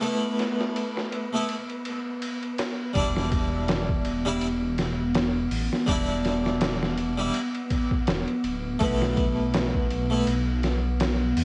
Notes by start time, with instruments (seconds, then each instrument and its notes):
Already playing: ambient pad B3, synth texture B4
0.01 harpsichord A3 B3, ride
0.06 harpsichord E4
0.39 snare, ride
0.61 snare
0.76 ride
0.97 snare
1.12 ride
1.33 harpsichord A3 B3 E4
1.49 ride
1.70 ride
1.85 ride
2.22 ride
2.43 ride
2.58 snare, ride
2.93 detuned saw bass E1, harpsichord G3 D4, ambient pad B3, kick, ride
2.99 harpsichord E4
3.17 snare
3.32 kick, ride
3.68 snare, ride
3.89 kick
4.05 ride
4.25 harpsichord G3 D4 E4
4.41 detuned saw bass E1, ride
4.78 snare, ride
5.15 snare, ride
5.51 detuned saw bass A1, open hi-hat
5.73 snare
5.86 detuned saw bass E1, harpsichord G3 D4, kick, ride
5.91 harpsichord E4
6.25 snare, ride
6.46 snare
6.61 snare, ride
6.83 snare
6.97 ride
7.18 harpsichord G3 D4 E4
7.34 ride
7.55 ride
7.70 kick, ride
7.91 kick
8.07 detuned saw bass E1, snare, ride
8.28 ride
8.44 detuned saw bass D1, ride
8.79 detuned saw bass B1, harpsichord A3 B3, kick, ride
8.84 harpsichord E4
9.02 snare
9.17 kick, ride
9.54 snare, ride
9.74 kick
9.90 ride
10.10 harpsichord A3 B3 E4
10.27 detuned saw bass B1, ride
10.63 snare, ride
11.00 snare, ride
11.37 detuned saw bass E2, open hi-hat